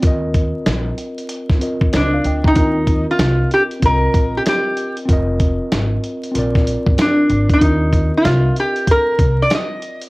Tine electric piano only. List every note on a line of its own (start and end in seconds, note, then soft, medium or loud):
0.00 1.56 C4 medium
0.00 1.57 F4 medium
0.04 1.59 A#4 medium
0.04 1.60 D#5 medium
1.59 2.52 C4 medium
1.59 2.55 F4 soft
1.59 2.56 A#4 soft
1.59 1.92 D#5 medium
1.93 2.12 C5 medium
1.93 2.12 D#5 medium
2.14 2.25 D5 medium
2.14 2.24 F5 medium
2.26 2.45 D#5 medium
2.26 2.44 G5 medium
2.46 2.75 G5 medium
2.46 2.75 A#5 medium
2.53 3.78 C4 medium
2.53 3.80 F4 medium
2.58 3.81 A#4 medium
2.58 3.82 D#5 medium
3.80 5.04 C4 medium
3.80 5.06 F4 medium
3.84 5.07 A#4 medium
3.84 5.08 D#5 medium
5.05 6.30 C4 medium
5.05 6.32 F4 medium
5.10 6.33 A#4 medium
5.10 6.34 D#5 medium
6.31 7.56 C4 medium
6.31 7.58 F4 medium
6.36 7.59 A#4 medium
6.36 7.61 D5 medium
7.58 10.08 C4 medium
7.58 10.09 F4 medium
7.62 10.09 A#4 medium
7.62 10.09 D#5 medium